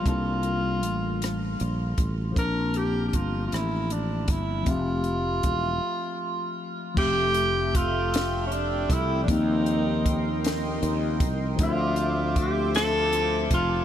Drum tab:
CC |------|------|------|x-----|
HH |xxxxxx|xxxxxx|xxx---|-xxxxx|
SD |---r--|---r--|------|---o--|
BD |o----o|o-o--o|o-o---|o-o--o|

CC |------|------|
HH |xxxxxx|xxxxxx|
SD |---o--|---o--|
BD |o-o--o|o-o--o|